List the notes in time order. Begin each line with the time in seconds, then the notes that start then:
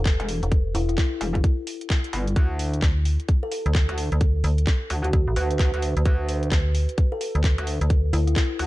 Already playing: E1
0.05 kick, clap, closed hi-hat
0.20 E1, closed hi-hat
0.29 open hi-hat
0.43 E1, closed hi-hat
0.52 kick, closed hi-hat
0.75 E1 E4, open hi-hat
0.89 E4, closed hi-hat
0.98 kick, clap, closed hi-hat
1.21 E1, open hi-hat
1.35 kick, closed hi-hat
1.44 kick, closed hi-hat
1.67 open hi-hat
1.81 closed hi-hat
1.90 kick, clap, closed hi-hat
2.04 closed hi-hat
2.13 G1, open hi-hat
2.28 closed hi-hat
2.36 D2, kick, closed hi-hat
2.59 open hi-hat
2.74 closed hi-hat
2.82 D2, kick, clap, closed hi-hat
3.05 open hi-hat
3.20 closed hi-hat
3.29 kick, closed hi-hat
3.43 A4
3.52 A4, open hi-hat
3.66 D2, closed hi-hat
3.75 kick, clap, closed hi-hat
3.89 D2, closed hi-hat
3.98 open hi-hat
4.12 D2, closed hi-hat
4.21 kick, closed hi-hat
4.44 D2, open hi-hat
4.58 closed hi-hat
4.67 kick, clap, closed hi-hat
4.90 D2, open hi-hat
5.04 F#4, closed hi-hat
5.13 D2, kick, closed hi-hat
5.28 A1
5.36 D2 B4, open hi-hat
5.51 B4, closed hi-hat
5.59 kick, clap, closed hi-hat
5.74 D2, closed hi-hat
5.82 open hi-hat
5.97 D2, closed hi-hat
6.05 D2, kick, closed hi-hat
6.29 open hi-hat
6.43 closed hi-hat
6.52 D2, kick, clap, closed hi-hat
6.75 open hi-hat
6.89 closed hi-hat
6.98 kick, closed hi-hat
7.12 A4
7.21 A4, open hi-hat
7.35 D2, closed hi-hat
7.44 kick, clap, closed hi-hat
7.58 D2, closed hi-hat
7.67 open hi-hat
7.81 D2, closed hi-hat
7.90 kick, closed hi-hat
8.13 D2 E4, open hi-hat
8.27 E4, closed hi-hat
8.36 kick, clap, closed hi-hat
8.59 D2, open hi-hat